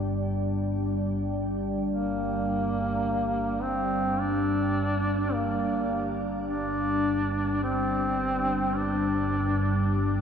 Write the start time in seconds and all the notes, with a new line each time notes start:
Already playing: G1 G2 G3 D4 D5 G5
1.89 A#3
3.63 C4
4.20 D4
5.34 A#3
6.49 D4
7.63 C4
8.76 D4